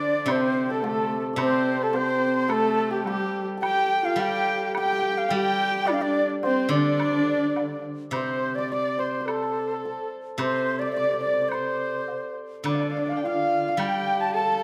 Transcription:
Already playing: D3 D4 C5 D5 F5
0.26 C3 C4 C5, high woodblock
0.31 C5
0.35 A4
0.41 C5
0.70 A4
0.83 A3 A4, low woodblock
1.33 C3 D5
1.37 C4 C5, high woodblock
1.42 C5
1.82 A4
1.93 C4 C5, low woodblock
2.36 C5
2.48 A3 A4, high woodblock
2.91 G4
3.05 G3 G4, high woodblock, low woodblock
3.57 A5
3.62 G4 G5, high woodblock
4.05 F4 F5
4.16 G3 G5, low woodblock
4.20 G4 G5
4.75 G4 G5, high woodblock
4.86 G5
4.92 G5
4.99 G5
5.12 G5
5.18 F5 G5
5.29 G3 G5, low woodblock
5.33 G4 G5
5.85 D5, high woodblock
5.91 D4 D5 F5
6.00 D5
6.05 D4
6.43 C4 C5, low woodblock
6.69 D3 D5
6.74 D4 D5
7.00 high woodblock
7.56 high woodblock, low woodblock
8.11 C3 C5, high woodblock
8.16 C5
8.55 D5
8.70 D5
8.98 C5
9.20 C5
9.26 A4, high woodblock
9.36 C5
9.42 A4
9.52 C5
9.58 A4
9.67 C5
9.75 A4
9.85 A4
10.38 C3 C5, high woodblock
10.79 D5
10.85 D5
10.92 D5
10.96 D5
11.04 D5
11.13 D5
11.21 D5
11.26 D5
11.33 D5
11.42 D5
11.47 C5 D5
11.52 C5, high woodblock
12.08 low woodblock
12.64 D3 D4 D5, high woodblock
12.68 D5
12.74 D5 F5
12.81 D5
12.90 D5 F5
12.97 D5
13.06 D5 F5
13.12 D5
13.17 G5
13.23 F4 F5
13.68 F5
13.77 G3 G4 G5, high woodblock
13.82 G5
14.20 A5
14.34 A4 A5
14.38 A5

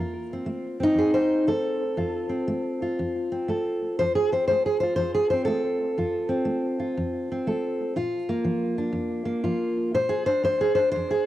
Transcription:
Already playing: F2 F4
0.33 C4
0.46 A3
0.80 C4 D#4
0.95 F2 G#4
1.14 C5
1.47 A3 A4
1.97 F2 F4
2.29 C4
2.48 A3
2.82 F4
2.99 F2
3.32 C4
3.48 A3 A4
3.99 F2 C5
4.15 G#4
4.32 C4 C5
4.47 A3 C5
4.66 G#4
4.80 F4 C5
4.96 F2 C5
5.14 G#4
5.30 C4 C5
5.45 A3 A4
5.98 F2 F4
6.29 C4
6.45 A3
6.80 F4
6.97 F2
7.32 C4
7.47 A3 A4
7.96 A#2 F4
8.29 A#3
8.45 F3
8.78 D4
8.92 F2
9.25 A#3
9.44 F3 F4
9.94 A#2 C5
10.09 G#4
10.26 D4 C5
10.43 A#3 C5
10.61 G#4
10.75 D4 C5
10.91 C5
10.96 F2
11.11 G#4

